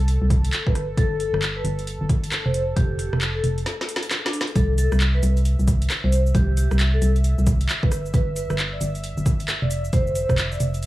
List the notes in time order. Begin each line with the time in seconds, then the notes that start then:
Already playing: C2 A4
0.08 closed hi-hat
0.22 C2
0.30 kick, open hi-hat
0.44 closed hi-hat
0.53 clap, closed hi-hat
0.67 G1 B4, kick
0.75 cross-stick, open hi-hat
0.97 G1 A4, kick, closed hi-hat
1.20 A4, open hi-hat
1.34 G1, cross-stick
1.42 clap, closed hi-hat
1.56 B4
1.65 G1, open hi-hat
1.79 closed hi-hat
1.87 closed hi-hat
2.01 G1
2.09 kick, open hi-hat
2.24 closed hi-hat
2.32 cross-stick, clap, closed hi-hat
2.46 F1 C5
2.54 open hi-hat
2.76 F1 G4, kick, closed hi-hat
2.99 G4, open hi-hat
3.13 F1, cross-stick
3.21 clap, closed hi-hat
3.35 A4
3.44 F1, open hi-hat
3.58 closed hi-hat
3.66 snare, closed hi-hat
3.81 snare
3.89 open hi-hat
3.96 snare
4.03 closed hi-hat
4.11 snare, clap, closed hi-hat
4.25 D4, snare
4.33 open hi-hat
4.41 snare
4.47 closed hi-hat
4.56 C2 A4 E5, kick, closed hi-hat, cabasa
4.78 A4, open hi-hat, cabasa
4.92 C2, cross-stick, cabasa
5.00 clap, closed hi-hat, cabasa
5.15 B4
5.23 C2, open hi-hat, cabasa
5.37 closed hi-hat, cabasa
5.45 closed hi-hat, cabasa
5.59 C2, cabasa
5.68 kick, open hi-hat, cabasa
5.82 closed hi-hat, cabasa
5.90 cross-stick, clap, closed hi-hat, cabasa
6.04 C2 C5
6.12 open hi-hat, cabasa
6.26 cabasa
6.35 C2 G4, kick, closed hi-hat, cabasa
6.57 G4, open hi-hat, cabasa
6.71 C2, cross-stick, cabasa
6.80 clap, closed hi-hat, cabasa
6.94 A4
7.02 C2, open hi-hat, cabasa
7.16 closed hi-hat, cabasa
7.24 closed hi-hat, cabasa
7.38 C2, cabasa
7.47 kick, open hi-hat, cabasa
7.61 closed hi-hat, cabasa
7.69 clap, closed hi-hat, cabasa
7.83 G1 B4, kick
7.92 cross-stick, open hi-hat, cabasa
8.06 cabasa
8.14 G1 B4, kick, closed hi-hat, cabasa
8.36 B4, open hi-hat, cabasa
8.50 G1, cross-stick, cabasa
8.59 clap, closed hi-hat, cabasa
8.73 D5
8.81 G1, open hi-hat, cabasa
8.95 closed hi-hat, cabasa
9.04 closed hi-hat, cabasa
9.18 G1, cabasa
9.26 kick, open hi-hat, cabasa
9.40 closed hi-hat, cabasa
9.48 cross-stick, clap, closed hi-hat, cabasa
9.62 F1 D5
9.71 open hi-hat, cabasa
9.85 cabasa
9.93 F1 C5, kick, closed hi-hat, cabasa
10.07 cabasa
10.15 C5, open hi-hat, cabasa
10.29 F1, kick, cross-stick, cabasa
10.38 clap, closed hi-hat, cabasa
10.52 D5, cabasa
10.60 F1, open hi-hat, cabasa
10.74 closed hi-hat, cabasa
10.83 closed hi-hat, cabasa